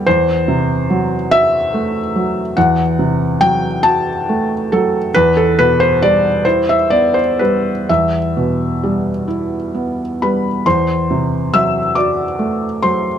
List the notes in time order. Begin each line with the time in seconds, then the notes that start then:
0.07 E2 C5
0.48 C3
0.90 F#3
1.31 F#4 E5
1.74 A3
2.16 F#3
2.57 E2 F#5
2.99 C3
3.41 F#3 G5
3.83 F#4 A5
4.29 A3
4.72 F#3 A4
5.14 E2 B4
5.37 A4
5.59 B2 B4
5.80 C5
6.02 G3 D5
6.45 E4 C5
6.69 E5
6.90 B3 D5
7.14 C5
7.39 G3 B4
7.89 E2 E5
8.37 B2
8.84 G3
9.28 E4
9.74 B3
10.22 G3 B4 B5
10.66 E2 C5 C6
11.11 C3
11.54 F#3 E5 E6
11.95 F#4 D5 D6
12.39 A3
12.83 F#3 C5 C6